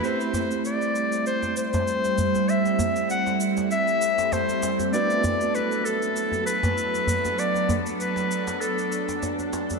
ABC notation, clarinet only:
X:1
M:4/4
L:1/16
Q:"Swing 16ths" 1/4=98
K:Ador
V:1 name="Clarinet"
c4 d4 c2 c6 | e4 f2 z2 e4 c3 z | d4 B2 A4 B6 | d2 z2 B4 A4 z4 |]